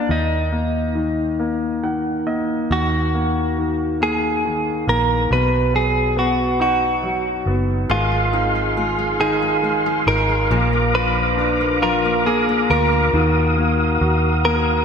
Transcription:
Already playing: grand piano A#3, clean electric guitar D4
0.09 fingered electric bass D#2, grand piano D#3, clean electric guitar D#4
0.52 grand piano A#3
0.95 grand piano D#3
1.39 grand piano A#3
1.83 grand piano D#3 F#5
2.27 grand piano A#3 D#5
2.71 fingered electric bass D#2, grand piano D#3, clean electric guitar F#4
3.14 grand piano A#3
3.58 grand piano D#3
4.01 grand piano A#3, clean electric guitar G#4
4.45 grand piano D#3
4.87 fingered electric bass A#1, grand piano A#3, clean electric guitar A#4
5.31 fingered electric bass B1, grand piano B2, clean electric guitar B4
5.74 grand piano F#3, clean electric guitar G#4
6.17 grand piano B3, clean electric guitar F#4
6.60 grand piano D#4, clean electric guitar F#4
7.03 grand piano F#3
7.46 fingered electric bass F#1, grand piano B3
7.89 fingered electric bass G#1, steel-string acoustic guitar D#3, grand piano G#3, clean electric guitar F4, tonewheel organ G#4 F5 C6
8.12 steel-string acoustic guitar G#3
8.33 steel-string acoustic guitar C4, grand piano D#4
8.55 steel-string acoustic guitar G#3
8.77 grand piano G#3, steel-string acoustic guitar F4
8.99 steel-string acoustic guitar G#3
9.20 steel-string acoustic guitar D#3, grand piano D#4, clean electric guitar G#4
9.42 steel-string acoustic guitar G#3
9.63 grand piano G#3, steel-string acoustic guitar C4
9.86 steel-string acoustic guitar G#3
10.07 fingered electric bass G#1, grand piano D#4, steel-string acoustic guitar F4, clean electric guitar A#4
10.29 steel-string acoustic guitar G#3
10.50 fingered electric bass A#1, grand piano A#2, steel-string acoustic guitar F3, tonewheel organ A#5 D6
10.73 steel-string acoustic guitar A#3
10.94 steel-string acoustic guitar D4, grand piano F4, clean electric guitar B4
11.37 grand piano D4, steel-string acoustic guitar F4
11.61 steel-string acoustic guitar A#3
11.82 steel-string acoustic guitar F3, grand piano F4, clean electric guitar F4 A#4
12.05 steel-string acoustic guitar A#3
12.25 grand piano A#3, steel-string acoustic guitar D4, clean electric guitar G#4
12.49 steel-string acoustic guitar A#3
12.70 fingered electric bass D2, grand piano F4, steel-string acoustic guitar F4, clean electric guitar A#4
12.93 steel-string acoustic guitar A#3
13.13 fingered electric bass D#2, grand piano D#3, tonewheel organ F#4 F5 D#6
13.57 grand piano A#3
14.01 fingered electric bass D#2, grand piano F#4
14.45 grand piano A#3, clean electric guitar A#4

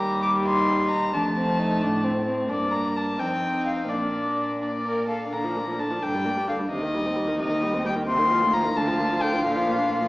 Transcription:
Already playing: cello D#2, viola G3, violin G4 A#5
0.22 violin D6
0.46 violin D#4 C6
0.91 violin A#5
1.13 cello F2, viola A3, violin D4 A5
1.37 violin C4
1.59 violin D#4
1.82 cello A2, violin D4
2.04 violin C4
2.26 violin C4
2.49 cello G2, viola A#3, violin D4 D5
2.72 violin A#5
2.97 violin A5
3.19 cello F2, viola C4, violin D#4 G5
3.67 violin F5
3.89 cello A#2, viola A#3, violin D4 D5
4.61 violin D4 D5
4.85 violin A#4
5.08 violin A4 F5
5.32 cello A#2, viola D3, violin D4 A#5
5.44 viola F3
5.56 viola A#3
5.67 viola F3
5.79 viola D3, violin A5
5.91 viola F3
6.01 cello G2, viola D3, violin G5
6.15 viola G3
6.25 viola A#3
6.37 viola G3
6.48 viola D3, violin F5
6.59 viola G3
6.70 cello D#2, viola C3, violin D#4 D#5
6.83 viola D#3
6.95 viola G3
7.06 viola C4
7.16 viola G3
7.28 viola D#3
7.40 cello D#2, viola C3, violin D#5
7.51 viola D#3
7.62 viola G3
7.74 viola C4
7.85 viola G3, violin G5
7.96 viola D#3
8.07 cello D#2, viola C3, violin F4 C6
8.18 viola D#3
8.30 viola F3
8.42 viola A3
8.53 viola F3, violin A#5
8.65 viola D#3
8.76 cello D2, viola D3, violin A5
8.87 viola F3
8.99 viola A#3
9.11 viola F3
9.22 viola D3, violin G5
9.33 viola F3
9.44 cello A#2, viola D3, violin F5
9.56 viola F3
9.67 viola A#3
9.78 viola D4
9.89 viola A#3
10.01 viola F3

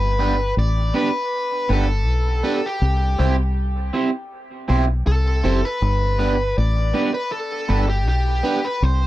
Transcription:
Already playing: fingered electric bass G1, lead electric guitar B4
0.19 clean electric guitar B3 D4 G4 B4
0.57 fingered electric bass A1, lead electric guitar D5
0.94 clean electric guitar B3 D4 G4 B4, lead electric guitar B4
1.69 fingered electric bass G1, clean electric guitar B3 D4 G4 B4, lead electric guitar A4
1.88 muted clean electric guitar stroke
2.07 fingered electric bass B1
2.43 clean electric guitar B3 D4 G4 B4
2.66 lead electric guitar G4
2.82 fingered electric bass C2
3.18 fingered electric bass C2, clean electric guitar C4 E4 G4 C5
3.93 clean electric guitar C4 E4 G4 C5
4.68 fingered electric bass B1, clean electric guitar C4 E4 G4 C5
4.87 muted clean electric guitar stroke
5.07 fingered electric bass C2, lead electric guitar A4
5.44 fingered electric bass F#1, clean electric guitar C4 E4 G4 C5
5.65 lead electric guitar B4
5.82 fingered electric bass G1
6.19 clean electric guitar B3 D4 G4 B4
6.58 fingered electric bass A1, lead electric guitar D5
6.94 clean electric guitar B3 D4 G4 B4
7.14 lead electric guitar B4
7.32 lead electric guitar A4
7.69 fingered electric bass G1, clean electric guitar B3 D4 G4 B4
7.87 lead electric guitar G4, muted clean electric guitar stroke
8.07 fingered electric bass B1, lead electric guitar G4
8.43 clean electric guitar B3 D4 G4 B4
8.65 lead electric guitar B4
8.82 fingered electric bass C2, lead electric guitar C5

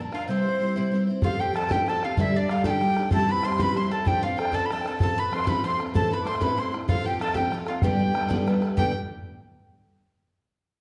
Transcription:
Already playing: twelve-string acoustic guitar F3
0.00 twelve-string acoustic guitar A#3 D4 A#4
0.12 twelve-string acoustic guitar F3 A#3 D4 A#4, mandolin F4, flute F5, fiddle F5, bodhran
0.27 twelve-string acoustic guitar C3 G3 C4 E4 C5, mandolin C4, flute C5, fiddle C5
0.45 twelve-string acoustic guitar C4 E4 C5
0.60 twelve-string acoustic guitar G3 C4 E4 C5
0.76 twelve-string acoustic guitar C3 G3 C4 E4 C5
0.91 twelve-string acoustic guitar G3 C4 E4 C5
1.07 twelve-string acoustic guitar C4 E4 C5
1.22 twelve-string acoustic guitar F3 C4 G4 A4, mandolin F4, fiddle F5, flute F5, bodhran
1.39 twelve-string acoustic guitar C4 G4 A4, mandolin G4, fiddle G5, flute G5
1.53 twelve-string acoustic guitar F3 C4 G4 A4, mandolin A4, fiddle A5, flute A5, bodhran
1.63 bodhran
1.69 twelve-string acoustic guitar F3 C4 G4 A4, mandolin G4, flute G5, fiddle G5, bodhran
1.86 twelve-string acoustic guitar F3 C4 G4, mandolin A4, flute A5, fiddle A5, bodhran
1.90 twelve-string acoustic guitar A4
2.02 twelve-string acoustic guitar C4 G4 A4, mandolin F4, flute F5, fiddle F5, bodhran
2.17 twelve-string acoustic guitar G2 D3 G3 D4 G4 A4, mandolin E4, flute E5, fiddle E5, bodhran
2.34 twelve-string acoustic guitar G3 D4 G4 A4, mandolin D4, flute D5, fiddle D5
2.49 twelve-string acoustic guitar G3 D4 G4 A4, mandolin F4, fiddle F5, flute F5, bodhran
2.57 bodhran
2.64 twelve-string acoustic guitar G2 D3 G3 D4 G4 A4, mandolin G4, fiddle G5, flute A5, bodhran
2.70 flute G5
2.81 twelve-string acoustic guitar G3 D4 G4 A4, bodhran
2.96 twelve-string acoustic guitar G3 D4 G4 A4, bodhran
3.11 twelve-string acoustic guitar C3 G3 C4 E4 G4, mandolin A4, fiddle A5, flute A5, bodhran
3.27 twelve-string acoustic guitar C4 E4 G4, mandolin B4, fiddle B5
3.32 flute B5
3.43 twelve-string acoustic guitar G3 C4 E4 G4, mandolin C5, fiddle C6, flute C6, bodhran
3.52 bodhran
3.56 twelve-string acoustic guitar C4 E4 G4, mandolin B4, fiddle B5 C6, bodhran
3.60 twelve-string acoustic guitar C3 G3, flute B5
3.75 twelve-string acoustic guitar G3 C4 E4 G4, mandolin C5, flute C6, fiddle C6, bodhran
3.89 twelve-string acoustic guitar E4 G4, mandolin A4, fiddle A5 B5, flute A5, bodhran
3.94 twelve-string acoustic guitar C4
4.05 twelve-string acoustic guitar F3 C4 D4 A4, mandolin G4, flute G5, fiddle G5, bodhran
4.21 twelve-string acoustic guitar C4 D4 A4, mandolin F4, fiddle F5, flute F5
4.36 twelve-string acoustic guitar F3 C4 D4 A4, fiddle G5, flute G5, bodhran
4.45 bodhran
4.52 twelve-string acoustic guitar F3 C4 D4 A4, mandolin A4, fiddle A5, flute A5, bodhran
4.66 flute B5
4.70 twelve-string acoustic guitar F3 C4 D4 A4, mandolin A4, fiddle A5, flute A5, bodhran
4.81 twelve-string acoustic guitar A4, flute G5
4.86 twelve-string acoustic guitar C4 D4, mandolin A4, flute A5, bodhran
4.99 twelve-string acoustic guitar F3 C4 F4 A4, fiddle A5, flute A5, bodhran
5.03 mandolin A4
5.16 twelve-string acoustic guitar C4 F4 A4, mandolin B4, fiddle B5, flute B5
5.31 twelve-string acoustic guitar F3 C4 F4 A4, fiddle C6, flute C6, bodhran
5.40 mandolin C5, bodhran
5.46 twelve-string acoustic guitar F3 C4 F4 A4, mandolin B4, fiddle B5, flute B5, bodhran
5.63 twelve-string acoustic guitar F3 C4 F4 A4, mandolin C5, fiddle C6, flute C6, bodhran
5.79 twelve-string acoustic guitar C4 F4 A4, bodhran
5.94 twelve-string acoustic guitar A2 E3 A3 C4 E4 A4, mandolin A4, fiddle A5, flute A5, bodhran
6.10 twelve-string acoustic guitar A3 C4 E4 A4, mandolin B4, fiddle B5, flute B5
6.23 twelve-string acoustic guitar A3 C4 E4, fiddle C6 D6, bodhran
6.27 twelve-string acoustic guitar A4, mandolin C5, flute C6
6.35 flute C6, bodhran
6.40 twelve-string acoustic guitar A2 E3 A3 C4 E4 A4, mandolin B4, fiddle B5, flute B5, bodhran
6.57 twelve-string acoustic guitar A3 C4 E4 A4, mandolin C5, fiddle C6, flute C6, bodhran
6.72 twelve-string acoustic guitar A3 C4 E4 A4, bodhran
6.88 twelve-string acoustic guitar F3 C4 F4 A4, mandolin F4, fiddle F5, flute F5, bodhran
7.04 twelve-string acoustic guitar C4 F4 A4, mandolin G4, fiddle G5, flute G5
7.19 twelve-string acoustic guitar F3 C4 F4 A4, mandolin A4, fiddle A5, flute A5, bodhran
7.29 bodhran
7.34 twelve-string acoustic guitar F3 C4 F4 A4, mandolin G4, fiddle G5, flute G5, bodhran
7.51 twelve-string acoustic guitar F3 C4 F4 A4, bodhran
7.66 twelve-string acoustic guitar C4 F4 A4, mandolin F4, flute F5, fiddle F5, bodhran
7.82 twelve-string acoustic guitar G2 D3 G3 B3 D4 A4, mandolin G4, flute G5, fiddle G5, bodhran
7.99 twelve-string acoustic guitar G3 B3 D4 A4
8.13 twelve-string acoustic guitar G3 B3 D4 A4, bodhran
8.23 bodhran
8.28 twelve-string acoustic guitar G2 D3 G3 B3 D4 A4, bodhran
8.46 twelve-string acoustic guitar G3 B3 D4 A4, bodhran
8.61 twelve-string acoustic guitar G3 B3 D4 A4, bodhran
8.76 twelve-string acoustic guitar G2 D3 G3 B3 D4 A4, mandolin G4, flute G5, fiddle G5, bodhran

